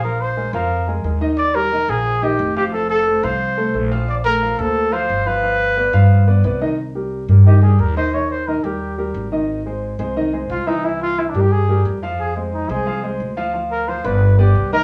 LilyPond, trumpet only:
\new Staff \with { instrumentName = "Trumpet" } { \time 4/4 \key c \minor \tempo 4 = 178 bes'8 c''4 bes'4 r4. | d''8 bes'4 aes'4 g'4 g'8 | a'8 a'4 c''2 r8 | d''8 bes'4 a'4 c''4 b'8~ |
b'2. r4 | r2 g'8 aes'8 bes'8 c''8 | des''8 c''8 bes'8 g'4 r4. | r2. f'8 ees'8 |
e'8 f'8 \tuplet 3/2 { e'8 d'8 g'8 } aes'4 r4 | aes'8 c'8 ees'8 aes'4 r4. | r8 ais'8 c''8 b'4 g'4 bes'8 | }